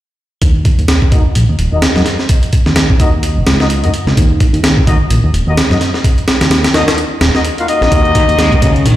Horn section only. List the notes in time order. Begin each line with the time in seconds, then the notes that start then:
1.12 A#3 D#4 F#4 D#5
1.73 A#3 D#4 F#4 D#5
1.96 A#3 D#4 F#4 D#5
3.00 A#3 D#4 F#4 D#5
3.60 A#3 D#4 F#4 D#5
3.84 A#3 D#4 F#4 D#5
4.87 A#3 D#4 F#4 D#5
5.47 A#3 D#4 F#4 D#5
5.71 A#3 D#4 F#4 D#5
6.74 A#3 D#4 F#4 D#5
7.35 A#3 D#4 F#4 D#5
7.58 A#3 D#4 F4 F#4 F5
7.68 A#3 D#4 F#4 D#5
8.62 A#3 D#4 F#4 D#5